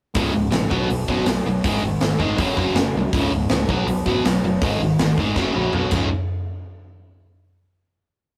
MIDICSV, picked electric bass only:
0, 0, Header, 1, 2, 480
1, 0, Start_track
1, 0, Tempo, 372671
1, 196, Time_signature, 4, 2, 24, 8
1, 10787, End_track
2, 0, Start_track
2, 0, Title_t, "Picked electric bass"
2, 0, Program_c, 0, 34
2, 198, Note_on_c, 0, 25, 82
2, 365, Note_off_c, 0, 25, 0
2, 451, Note_on_c, 0, 25, 78
2, 614, Note_off_c, 0, 25, 0
2, 658, Note_on_c, 0, 34, 92
2, 833, Note_off_c, 0, 34, 0
2, 920, Note_on_c, 0, 35, 80
2, 1087, Note_off_c, 0, 35, 0
2, 1156, Note_on_c, 0, 35, 85
2, 1325, Note_off_c, 0, 35, 0
2, 1389, Note_on_c, 0, 32, 89
2, 1560, Note_off_c, 0, 32, 0
2, 1628, Note_on_c, 0, 35, 77
2, 1800, Note_off_c, 0, 35, 0
2, 1881, Note_on_c, 0, 35, 80
2, 2049, Note_off_c, 0, 35, 0
2, 2117, Note_on_c, 0, 32, 83
2, 2286, Note_off_c, 0, 32, 0
2, 2360, Note_on_c, 0, 32, 77
2, 2527, Note_off_c, 0, 32, 0
2, 2590, Note_on_c, 0, 32, 101
2, 2761, Note_off_c, 0, 32, 0
2, 2828, Note_on_c, 0, 32, 89
2, 2999, Note_off_c, 0, 32, 0
2, 3068, Note_on_c, 0, 30, 89
2, 3239, Note_off_c, 0, 30, 0
2, 3311, Note_on_c, 0, 30, 86
2, 3481, Note_off_c, 0, 30, 0
2, 3538, Note_on_c, 0, 30, 81
2, 3712, Note_off_c, 0, 30, 0
2, 3782, Note_on_c, 0, 36, 76
2, 3955, Note_off_c, 0, 36, 0
2, 4029, Note_on_c, 0, 25, 94
2, 4199, Note_off_c, 0, 25, 0
2, 4270, Note_on_c, 0, 25, 81
2, 4440, Note_off_c, 0, 25, 0
2, 4516, Note_on_c, 0, 25, 104
2, 4683, Note_off_c, 0, 25, 0
2, 4746, Note_on_c, 0, 35, 85
2, 4916, Note_off_c, 0, 35, 0
2, 4970, Note_on_c, 0, 35, 96
2, 5146, Note_off_c, 0, 35, 0
2, 5223, Note_on_c, 0, 32, 79
2, 5394, Note_off_c, 0, 32, 0
2, 5467, Note_on_c, 0, 35, 79
2, 5637, Note_off_c, 0, 35, 0
2, 5715, Note_on_c, 0, 30, 81
2, 5881, Note_off_c, 0, 30, 0
2, 5951, Note_on_c, 0, 32, 80
2, 6119, Note_off_c, 0, 32, 0
2, 6190, Note_on_c, 0, 32, 75
2, 6358, Note_off_c, 0, 32, 0
2, 6433, Note_on_c, 0, 32, 89
2, 6600, Note_off_c, 0, 32, 0
2, 6669, Note_on_c, 0, 32, 78
2, 6902, Note_off_c, 0, 32, 0
2, 6902, Note_on_c, 0, 30, 89
2, 7072, Note_off_c, 0, 30, 0
2, 7164, Note_on_c, 0, 34, 84
2, 7327, Note_off_c, 0, 34, 0
2, 7383, Note_on_c, 0, 35, 84
2, 7553, Note_off_c, 0, 35, 0
2, 7624, Note_on_c, 0, 25, 83
2, 7849, Note_off_c, 0, 25, 0
2, 10787, End_track
0, 0, End_of_file